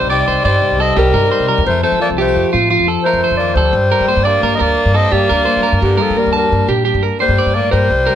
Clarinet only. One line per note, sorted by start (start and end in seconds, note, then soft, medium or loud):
0.09 0.42 D5 loud
0.44 0.83 D5 medium
0.81 0.98 D#5 medium
0.98 1.63 A#4 medium
1.67 1.82 C5 medium
1.84 2.00 C5 medium
2.02 2.09 D5 medium
2.21 2.56 C5 medium
3.04 3.36 C5 medium
3.37 3.56 D5 medium
3.55 4.25 C5 medium
4.24 4.53 D5 loud
4.55 4.62 D#5 medium
4.60 4.97 D5 loud
4.95 5.13 D#5 medium
5.11 5.81 D5 loud
5.82 6.04 G4 medium
6.02 6.19 A4 medium
6.18 6.35 A#4 medium
6.38 6.73 A#4 medium
7.21 7.56 C5 loud
7.54 7.70 D5 medium
7.71 8.15 C5 loud